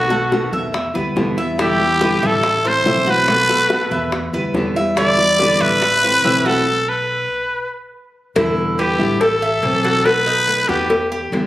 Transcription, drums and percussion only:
0.10 high bongo soft
0.32 high bongo medium
0.53 high bongo soft
0.74 high bongo medium
0.95 high bongo soft
1.17 high bongo soft
1.17 low bongo medium
1.59 high bongo medium
1.80 high bongo soft
2.01 high bongo medium
2.23 high bongo soft
2.44 high bongo medium
2.64 high bongo soft
2.86 high bongo soft
2.86 low bongo medium
3.28 high bongo medium
3.50 high bongo soft
3.70 high bongo medium
3.91 high bongo soft
4.12 high bongo medium
4.33 high bongo soft
4.55 high bongo soft
4.55 low bongo medium
4.97 high bongo medium
5.18 high bongo soft
5.39 high bongo medium
5.61 high bongo soft
5.82 high bongo medium
6.04 high bongo soft
6.25 high bongo soft
6.25 low bongo medium
8.36 cowbell loud
8.79 cowbell medium
9.21 cowbell loud
9.63 cowbell medium
9.84 cowbell medium
10.06 cowbell loud
10.48 cowbell medium
10.90 cowbell loud
11.33 cowbell medium

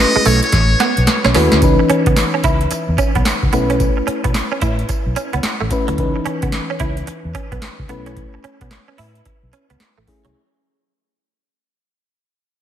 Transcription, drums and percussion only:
0.25 open hi-hat medium
0.25 tambourine medium
0.43 closed hi-hat soft
0.52 kick medium
0.52 snare medium
0.52 closed hi-hat medium
0.80 snare medium
0.80 closed hi-hat medium
0.97 closed hi-hat medium
1.07 snare medium
1.07 closed hi-hat medium
1.24 snare medium
1.34 snare loud
1.34 open hi-hat medium
1.52 snare medium
1.52 closed hi-hat medium
1.62 kick loud
1.62 closed hi-hat medium
1.62 tambourine medium
1.90 closed hi-hat medium
2.06 kick loud
2.06 closed hi-hat medium
2.16 snare loud
2.16 clap medium
2.16 closed hi-hat medium
2.16 tambourine loud
2.44 kick medium
2.44 closed hi-hat medium
2.44 tambourine medium
2.61 closed hi-hat soft
2.71 closed hi-hat medium
2.71 tambourine medium
2.98 kick medium
2.98 closed hi-hat medium
2.98 tambourine medium
3.15 kick medium
3.15 closed hi-hat medium
3.25 snare loud
3.25 clap medium
3.25 closed hi-hat medium
3.25 tambourine loud
3.43 kick medium
3.53 closed hi-hat medium
3.53 tambourine medium
3.70 closed hi-hat medium
3.80 kick loud
3.80 closed hi-hat medium
3.80 tambourine medium
4.08 closed hi-hat medium
4.24 kick loud
4.24 closed hi-hat medium
4.34 snare loud
4.34 clap medium
4.34 closed hi-hat medium
4.34 tambourine loud
4.61 kick medium
4.61 closed hi-hat medium
4.61 tambourine medium
4.79 closed hi-hat soft
4.89 kick medium
4.89 closed hi-hat medium
4.89 tambourine medium
5.16 closed hi-hat medium
5.16 tambourine medium
5.33 closed hi-hat medium
5.43 snare loud
5.43 clap medium
5.43 closed hi-hat medium
5.43 tambourine loud
5.71 kick loud
5.71 closed hi-hat medium
5.71 tambourine medium
5.88 closed hi-hat medium
5.98 kick loud
5.98 closed hi-hat medium
6.26 closed hi-hat medium
6.42 kick loud
6.42 closed hi-hat medium
6.52 snare loud
6.52 clap medium
6.52 closed hi-hat medium
6.80 kick medium
6.80 closed hi-hat medium
6.97 closed hi-hat medium
7.07 closed hi-hat medium
7.35 kick medium
7.35 closed hi-hat medium
7.52 kick loud
7.52 closed hi-hat soft
7.62 snare loud
7.62 clap medium
7.62 closed hi-hat medium
7.79 kick medium
7.89 closed hi-hat medium
8.06 closed hi-hat medium
8.17 kick loud
8.17 closed hi-hat medium
8.44 closed hi-hat medium
8.61 kick loud
8.61 closed hi-hat medium
8.71 snare loud
8.71 clap medium
8.71 closed hi-hat medium
8.98 open hi-hat medium
9.15 closed hi-hat soft
9.25 kick medium
9.25 closed hi-hat medium
9.53 closed hi-hat medium
9.70 closed hi-hat medium
9.80 snare loud
9.80 clap medium
9.80 closed hi-hat medium
10.07 kick loud
10.07 open hi-hat medium
10.25 closed hi-hat medium

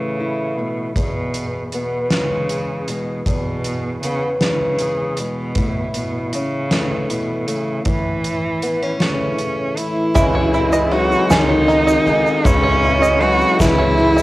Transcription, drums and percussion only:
0.96 kick medium
0.96 closed hi-hat medium
1.34 closed hi-hat soft
1.72 closed hi-hat soft
2.10 snare medium
2.10 closed hi-hat medium
2.49 closed hi-hat soft
2.88 closed hi-hat soft
3.26 kick medium
3.26 closed hi-hat medium
3.64 closed hi-hat soft
4.03 closed hi-hat soft
4.41 snare medium
4.41 closed hi-hat medium
4.79 closed hi-hat soft
5.17 closed hi-hat soft
5.55 kick medium
5.55 closed hi-hat medium
5.94 closed hi-hat soft
6.33 closed hi-hat soft
6.71 snare medium
6.71 closed hi-hat medium
7.10 closed hi-hat soft
7.48 closed hi-hat soft
7.85 kick medium
7.85 closed hi-hat medium
8.24 closed hi-hat soft
8.62 closed hi-hat soft
9.00 snare medium
9.00 closed hi-hat medium
9.38 closed hi-hat soft
9.77 closed hi-hat soft
10.15 kick loud
10.15 ride medium
10.15 shaker medium
10.54 ride medium
10.54 shaker soft
10.73 shaker medium
10.92 ride medium
11.12 shaker soft
11.30 snare loud
11.30 ride medium
11.30 shaker loud
11.69 ride medium
11.69 shaker soft
11.88 shaker medium
12.07 ride medium
12.07 shaker soft
12.27 shaker soft
12.45 kick loud
12.45 ride medium
12.45 shaker loud
12.84 ride medium
13.04 shaker medium
13.23 ride medium
13.41 shaker soft
13.60 kick medium
13.60 snare loud
13.60 ride medium
13.60 shaker loud
13.98 ride medium
14.18 shaker medium

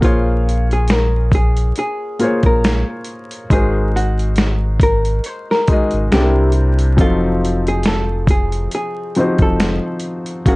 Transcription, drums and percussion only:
0.02 kick loud
0.02 closed hi-hat medium
0.49 closed hi-hat medium
0.71 closed hi-hat soft
0.88 finger snap medium
0.88 snare medium
0.88 closed hi-hat medium
1.32 kick loud
1.32 closed hi-hat medium
1.57 closed hi-hat soft
1.76 closed hi-hat medium
2.20 closed hi-hat medium
2.43 kick medium
2.43 closed hi-hat soft
2.64 finger snap medium
2.64 snare loud
2.64 closed hi-hat medium
3.04 closed hi-hat medium
3.31 closed hi-hat medium
3.50 kick loud
3.50 closed hi-hat medium
3.97 closed hi-hat medium
4.19 closed hi-hat soft
4.36 finger snap medium
4.36 snare medium
4.36 closed hi-hat medium
4.80 kick loud
4.80 closed hi-hat medium
5.05 closed hi-hat soft
5.24 closed hi-hat medium
5.51 snare soft
5.67 kick medium
5.67 closed hi-hat medium
5.91 closed hi-hat soft
6.12 finger snap medium
6.12 snare loud
6.12 closed hi-hat medium
6.52 closed hi-hat medium
6.79 closed hi-hat soft
6.98 kick loud
6.98 closed hi-hat medium
7.45 closed hi-hat medium
7.67 closed hi-hat soft
7.83 finger snap medium
7.83 snare loud
7.83 closed hi-hat medium
8.27 kick loud
8.27 closed hi-hat medium
8.52 closed hi-hat medium
8.71 closed hi-hat medium
9.15 closed hi-hat medium
9.38 kick medium
9.38 closed hi-hat soft
9.60 finger snap medium
9.60 snare loud
9.60 closed hi-hat medium
10.00 closed hi-hat medium
10.26 closed hi-hat medium
10.46 kick loud
10.46 closed hi-hat medium

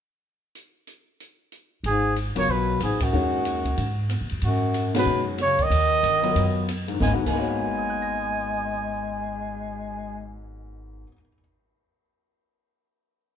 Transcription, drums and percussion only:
0.55 closed hi-hat medium
0.87 closed hi-hat medium
1.20 closed hi-hat medium
1.52 closed hi-hat soft
1.84 ride soft
2.16 hi-hat pedal soft
2.16 ride medium
2.36 ride medium
2.80 cross-stick medium
2.80 hi-hat pedal soft
2.80 ride medium
3.00 kick medium
3.00 ride medium
3.45 hi-hat pedal medium
3.45 ride medium
3.65 kick medium
3.65 ride soft
3.78 ride soft
4.09 cross-stick medium
4.09 hi-hat pedal soft
4.09 ride medium
4.29 ride soft
4.41 ride soft
4.74 hi-hat pedal medium
4.74 ride medium
4.94 snare medium
4.94 ride medium
5.38 cross-stick medium
5.38 hi-hat pedal medium
5.38 ride medium
5.59 kick medium
5.59 ride soft
5.71 ride medium
6.04 hi-hat pedal medium
6.04 ride medium
6.23 ride soft
6.36 ride medium
6.68 cross-stick medium
6.68 hi-hat pedal medium
6.68 ride medium
6.88 ride soft
7.00 kick medium
7.00 snare medium
7.26 kick soft
7.26 crash medium

